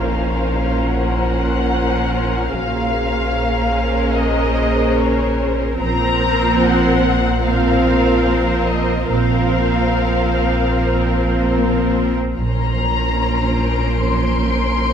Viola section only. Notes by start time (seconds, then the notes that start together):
Already playing: F3 C#4
2.51 C#3 C#4
5.80 F3 C4
7.45 F3 C4
9.09 F3 C4
12.37 F3 C#4